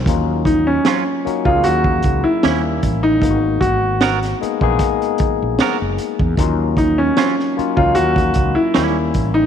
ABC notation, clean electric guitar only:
X:1
M:4/4
L:1/16
Q:"Swing 16ths" 1/4=76
K:Ebm
V:1 name="Clean electric guitar"
z4 [G,DF]2 z6 [=G,D_F]2 z2 | z4 [CGB]2 z6 [CGB]2 z2 | z4 [G,DF]2 z6 [=G,D_F] z3 |]